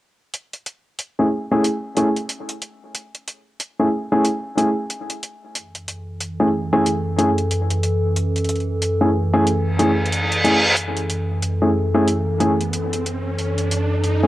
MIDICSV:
0, 0, Header, 1, 6, 480
1, 0, Start_track
1, 0, Key_signature, 3, "minor"
1, 0, Tempo, 652174
1, 250, Time_signature, 4, 2, 24, 8
1, 10503, End_track
2, 0, Start_track
2, 0, Title_t, "Grand piano"
2, 0, Program_c, 0, 0
2, 874, Note_on_c, 0, 61, 68
2, 875, Note_on_c, 0, 64, 65
2, 875, Note_on_c, 0, 68, 79
2, 876, Note_on_c, 0, 57, 73
2, 923, Note_off_c, 0, 61, 0
2, 923, Note_off_c, 0, 64, 0
2, 923, Note_off_c, 0, 68, 0
2, 924, Note_off_c, 0, 57, 0
2, 1113, Note_on_c, 0, 57, 85
2, 1114, Note_on_c, 0, 61, 80
2, 1114, Note_on_c, 0, 64, 80
2, 1114, Note_on_c, 0, 68, 97
2, 1191, Note_off_c, 0, 57, 0
2, 1192, Note_off_c, 0, 61, 0
2, 1192, Note_off_c, 0, 64, 0
2, 1192, Note_off_c, 0, 68, 0
2, 1447, Note_on_c, 0, 68, 86
2, 1448, Note_on_c, 0, 57, 80
2, 1448, Note_on_c, 0, 61, 73
2, 1448, Note_on_c, 0, 64, 73
2, 1522, Note_off_c, 0, 57, 0
2, 1522, Note_off_c, 0, 61, 0
2, 1522, Note_off_c, 0, 64, 0
2, 1522, Note_off_c, 0, 68, 0
2, 2793, Note_on_c, 0, 57, 71
2, 2793, Note_on_c, 0, 61, 66
2, 2794, Note_on_c, 0, 64, 67
2, 2794, Note_on_c, 0, 68, 78
2, 2842, Note_off_c, 0, 57, 0
2, 2842, Note_off_c, 0, 61, 0
2, 2843, Note_off_c, 0, 64, 0
2, 2843, Note_off_c, 0, 68, 0
2, 3032, Note_on_c, 0, 57, 88
2, 3032, Note_on_c, 0, 61, 80
2, 3033, Note_on_c, 0, 64, 78
2, 3033, Note_on_c, 0, 68, 96
2, 3111, Note_off_c, 0, 57, 0
2, 3111, Note_off_c, 0, 61, 0
2, 3111, Note_off_c, 0, 64, 0
2, 3111, Note_off_c, 0, 68, 0
2, 3367, Note_on_c, 0, 57, 82
2, 3367, Note_on_c, 0, 61, 73
2, 3367, Note_on_c, 0, 64, 72
2, 3368, Note_on_c, 0, 68, 90
2, 3442, Note_off_c, 0, 57, 0
2, 3442, Note_off_c, 0, 61, 0
2, 3442, Note_off_c, 0, 64, 0
2, 3443, Note_off_c, 0, 68, 0
2, 4710, Note_on_c, 0, 57, 74
2, 4710, Note_on_c, 0, 61, 65
2, 4710, Note_on_c, 0, 64, 66
2, 4710, Note_on_c, 0, 68, 80
2, 4761, Note_off_c, 0, 57, 0
2, 4761, Note_off_c, 0, 61, 0
2, 4761, Note_off_c, 0, 64, 0
2, 4761, Note_off_c, 0, 68, 0
2, 4951, Note_on_c, 0, 57, 90
2, 4951, Note_on_c, 0, 61, 83
2, 4951, Note_on_c, 0, 64, 82
2, 4951, Note_on_c, 0, 68, 100
2, 5030, Note_off_c, 0, 57, 0
2, 5030, Note_off_c, 0, 61, 0
2, 5030, Note_off_c, 0, 64, 0
2, 5030, Note_off_c, 0, 68, 0
2, 5285, Note_on_c, 0, 61, 73
2, 5286, Note_on_c, 0, 57, 79
2, 5286, Note_on_c, 0, 64, 74
2, 5286, Note_on_c, 0, 68, 87
2, 5361, Note_off_c, 0, 57, 0
2, 5361, Note_off_c, 0, 61, 0
2, 5361, Note_off_c, 0, 64, 0
2, 5361, Note_off_c, 0, 68, 0
2, 6630, Note_on_c, 0, 57, 72
2, 6630, Note_on_c, 0, 61, 68
2, 6631, Note_on_c, 0, 64, 70
2, 6631, Note_on_c, 0, 68, 82
2, 6681, Note_off_c, 0, 57, 0
2, 6681, Note_off_c, 0, 61, 0
2, 6681, Note_off_c, 0, 64, 0
2, 6681, Note_off_c, 0, 68, 0
2, 6871, Note_on_c, 0, 57, 91
2, 6871, Note_on_c, 0, 68, 98
2, 6872, Note_on_c, 0, 61, 82
2, 6872, Note_on_c, 0, 64, 83
2, 6950, Note_off_c, 0, 57, 0
2, 6950, Note_off_c, 0, 64, 0
2, 6950, Note_off_c, 0, 68, 0
2, 6951, Note_off_c, 0, 61, 0
2, 7205, Note_on_c, 0, 64, 74
2, 7206, Note_on_c, 0, 57, 81
2, 7206, Note_on_c, 0, 61, 75
2, 7206, Note_on_c, 0, 68, 92
2, 7281, Note_off_c, 0, 64, 0
2, 7282, Note_off_c, 0, 57, 0
2, 7282, Note_off_c, 0, 61, 0
2, 7282, Note_off_c, 0, 68, 0
2, 7685, Note_on_c, 0, 61, 73
2, 7686, Note_on_c, 0, 57, 81
2, 7686, Note_on_c, 0, 64, 74
2, 7687, Note_on_c, 0, 68, 92
2, 7761, Note_off_c, 0, 57, 0
2, 7761, Note_off_c, 0, 61, 0
2, 7762, Note_off_c, 0, 64, 0
2, 7762, Note_off_c, 0, 68, 0
2, 8551, Note_on_c, 0, 57, 76
2, 8551, Note_on_c, 0, 61, 68
2, 8551, Note_on_c, 0, 64, 69
2, 8551, Note_on_c, 0, 68, 82
2, 8601, Note_off_c, 0, 57, 0
2, 8601, Note_off_c, 0, 61, 0
2, 8601, Note_off_c, 0, 64, 0
2, 8601, Note_off_c, 0, 68, 0
2, 8790, Note_on_c, 0, 57, 90
2, 8791, Note_on_c, 0, 68, 99
2, 8792, Note_on_c, 0, 61, 82
2, 8793, Note_on_c, 0, 64, 83
2, 8870, Note_off_c, 0, 57, 0
2, 8870, Note_off_c, 0, 68, 0
2, 8871, Note_off_c, 0, 61, 0
2, 8871, Note_off_c, 0, 64, 0
2, 9126, Note_on_c, 0, 57, 80
2, 9126, Note_on_c, 0, 61, 75
2, 9126, Note_on_c, 0, 68, 90
2, 9127, Note_on_c, 0, 64, 74
2, 9201, Note_off_c, 0, 61, 0
2, 9201, Note_off_c, 0, 68, 0
2, 9202, Note_off_c, 0, 57, 0
2, 9202, Note_off_c, 0, 64, 0
2, 10474, Note_on_c, 0, 64, 70
2, 10475, Note_on_c, 0, 57, 74
2, 10475, Note_on_c, 0, 61, 70
2, 10475, Note_on_c, 0, 68, 83
2, 10503, Note_off_c, 0, 57, 0
2, 10503, Note_off_c, 0, 61, 0
2, 10503, Note_off_c, 0, 64, 0
2, 10503, Note_off_c, 0, 68, 0
2, 10503, End_track
3, 0, Start_track
3, 0, Title_t, "Ambient pad"
3, 0, Program_c, 1, 92
3, 4091, Note_on_c, 1, 42, 81
3, 4094, Note_on_c, 1, 69, 89
3, 4095, Note_on_c, 1, 52, 74
3, 7901, Note_off_c, 1, 42, 0
3, 7903, Note_off_c, 1, 52, 0
3, 7903, Note_off_c, 1, 69, 0
3, 7920, Note_on_c, 1, 52, 78
3, 7920, Note_on_c, 1, 69, 92
3, 7922, Note_on_c, 1, 42, 81
3, 10503, Note_off_c, 1, 42, 0
3, 10503, Note_off_c, 1, 52, 0
3, 10503, Note_off_c, 1, 69, 0
3, 10503, End_track
4, 0, Start_track
4, 0, Title_t, "Reverse cymbal"
4, 0, Program_c, 2, 119
4, 6966, Note_on_c, 2, 60, 73
4, 7928, Note_off_c, 2, 60, 0
4, 10503, End_track
5, 0, Start_track
5, 0, Title_t, "Riser"
5, 0, Program_c, 3, 103
5, 7926, Note_on_c, 3, 60, 77
5, 10503, Note_off_c, 3, 60, 0
5, 10503, End_track
6, 0, Start_track
6, 0, Title_t, "Drums"
6, 249, Note_on_c, 9, 42, 79
6, 322, Note_off_c, 9, 42, 0
6, 393, Note_on_c, 9, 42, 35
6, 467, Note_off_c, 9, 42, 0
6, 488, Note_on_c, 9, 42, 64
6, 561, Note_off_c, 9, 42, 0
6, 727, Note_on_c, 9, 42, 77
6, 800, Note_off_c, 9, 42, 0
6, 1208, Note_on_c, 9, 42, 79
6, 1282, Note_off_c, 9, 42, 0
6, 1446, Note_on_c, 9, 42, 62
6, 1520, Note_off_c, 9, 42, 0
6, 1592, Note_on_c, 9, 42, 34
6, 1666, Note_off_c, 9, 42, 0
6, 1686, Note_on_c, 9, 42, 74
6, 1759, Note_off_c, 9, 42, 0
6, 1831, Note_on_c, 9, 42, 60
6, 1905, Note_off_c, 9, 42, 0
6, 1926, Note_on_c, 9, 42, 64
6, 2000, Note_off_c, 9, 42, 0
6, 2168, Note_on_c, 9, 42, 80
6, 2242, Note_off_c, 9, 42, 0
6, 2316, Note_on_c, 9, 42, 36
6, 2389, Note_off_c, 9, 42, 0
6, 2411, Note_on_c, 9, 42, 63
6, 2485, Note_off_c, 9, 42, 0
6, 2649, Note_on_c, 9, 42, 78
6, 2722, Note_off_c, 9, 42, 0
6, 3126, Note_on_c, 9, 42, 78
6, 3200, Note_off_c, 9, 42, 0
6, 3371, Note_on_c, 9, 42, 62
6, 3445, Note_off_c, 9, 42, 0
6, 3607, Note_on_c, 9, 42, 74
6, 3680, Note_off_c, 9, 42, 0
6, 3753, Note_on_c, 9, 42, 61
6, 3826, Note_off_c, 9, 42, 0
6, 3849, Note_on_c, 9, 42, 64
6, 3923, Note_off_c, 9, 42, 0
6, 4087, Note_on_c, 9, 42, 76
6, 4161, Note_off_c, 9, 42, 0
6, 4233, Note_on_c, 9, 42, 36
6, 4306, Note_off_c, 9, 42, 0
6, 4329, Note_on_c, 9, 42, 63
6, 4403, Note_off_c, 9, 42, 0
6, 4568, Note_on_c, 9, 42, 76
6, 4642, Note_off_c, 9, 42, 0
6, 5049, Note_on_c, 9, 42, 79
6, 5122, Note_off_c, 9, 42, 0
6, 5288, Note_on_c, 9, 42, 61
6, 5362, Note_off_c, 9, 42, 0
6, 5432, Note_on_c, 9, 42, 36
6, 5505, Note_off_c, 9, 42, 0
6, 5526, Note_on_c, 9, 42, 76
6, 5600, Note_off_c, 9, 42, 0
6, 5670, Note_on_c, 9, 42, 62
6, 5744, Note_off_c, 9, 42, 0
6, 5765, Note_on_c, 9, 42, 62
6, 5838, Note_off_c, 9, 42, 0
6, 6007, Note_on_c, 9, 42, 73
6, 6081, Note_off_c, 9, 42, 0
6, 6152, Note_on_c, 9, 42, 33
6, 6165, Note_off_c, 9, 42, 0
6, 6165, Note_on_c, 9, 42, 27
6, 6215, Note_off_c, 9, 42, 0
6, 6215, Note_on_c, 9, 42, 22
6, 6247, Note_off_c, 9, 42, 0
6, 6247, Note_on_c, 9, 42, 62
6, 6296, Note_off_c, 9, 42, 0
6, 6296, Note_on_c, 9, 42, 15
6, 6330, Note_off_c, 9, 42, 0
6, 6330, Note_on_c, 9, 42, 13
6, 6404, Note_off_c, 9, 42, 0
6, 6490, Note_on_c, 9, 42, 73
6, 6563, Note_off_c, 9, 42, 0
6, 6969, Note_on_c, 9, 42, 77
6, 7043, Note_off_c, 9, 42, 0
6, 7209, Note_on_c, 9, 42, 59
6, 7282, Note_off_c, 9, 42, 0
6, 7403, Note_on_c, 9, 42, 33
6, 7452, Note_off_c, 9, 42, 0
6, 7452, Note_on_c, 9, 42, 74
6, 7526, Note_off_c, 9, 42, 0
6, 7595, Note_on_c, 9, 42, 59
6, 7669, Note_off_c, 9, 42, 0
6, 7689, Note_on_c, 9, 42, 61
6, 7763, Note_off_c, 9, 42, 0
6, 7926, Note_on_c, 9, 42, 80
6, 8000, Note_off_c, 9, 42, 0
6, 8072, Note_on_c, 9, 42, 37
6, 8146, Note_off_c, 9, 42, 0
6, 8168, Note_on_c, 9, 42, 67
6, 8242, Note_off_c, 9, 42, 0
6, 8409, Note_on_c, 9, 42, 82
6, 8483, Note_off_c, 9, 42, 0
6, 8888, Note_on_c, 9, 42, 81
6, 8961, Note_off_c, 9, 42, 0
6, 9128, Note_on_c, 9, 42, 65
6, 9202, Note_off_c, 9, 42, 0
6, 9277, Note_on_c, 9, 42, 37
6, 9351, Note_off_c, 9, 42, 0
6, 9370, Note_on_c, 9, 42, 79
6, 9443, Note_off_c, 9, 42, 0
6, 9516, Note_on_c, 9, 42, 62
6, 9590, Note_off_c, 9, 42, 0
6, 9613, Note_on_c, 9, 42, 66
6, 9686, Note_off_c, 9, 42, 0
6, 9852, Note_on_c, 9, 42, 83
6, 9925, Note_off_c, 9, 42, 0
6, 9995, Note_on_c, 9, 42, 38
6, 10068, Note_off_c, 9, 42, 0
6, 10093, Note_on_c, 9, 42, 68
6, 10166, Note_off_c, 9, 42, 0
6, 10330, Note_on_c, 9, 42, 83
6, 10404, Note_off_c, 9, 42, 0
6, 10503, End_track
0, 0, End_of_file